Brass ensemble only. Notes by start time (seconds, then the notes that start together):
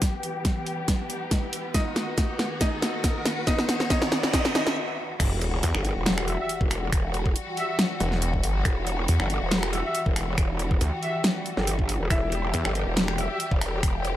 6.28 F#4 G4 E5
6.39 F#4 G4 E5
7.57 F#4 G4 E5
9.73 F#4 G4 E5
9.85 F#4 G4 E5
11.03 F#4 G4 E5
13.18 F#4 G4 E5
13.30 F#4 G4 E5